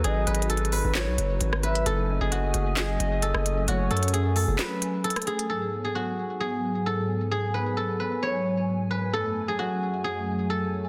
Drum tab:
HH |x-----------x---x---x---x---x---x---o-----------x-----------x-----------x-----------x-----x-----|x-----------------------x-----------x-----------x-----------x-----------x-----------x-----------|x-----------x--x--x--x--x-----------o-----------x-----------x-----------x--x--x--x--x-----x-----|------------------------------------------------------------------------------------------------|
CP |------------------------------------------------x-----------------------------------------------|------------------------------------------------x-----------------------------------------------|------------------------------------------------x-----------------------------------------------|------------------------------------------------------------------------------------------------|
SD |------------------------------------------------o-----------------------------r-----------------|------------------------------------------------o-----------------------------r-----------------|------------------------------------------------o-----------------------------r-----------------|------------------------------------------------------------------------------------------------|

HH |------------------------------------------------------------------------------------------------|------------------------------------------------------------------------------------------------|
CP |------------------------------------------------------------------------------------------------|------------------------------------------------------------------------------------------------|
SD |------------------------------------------------------------------------------------------------|------------------------------------------------------------------------------------------------|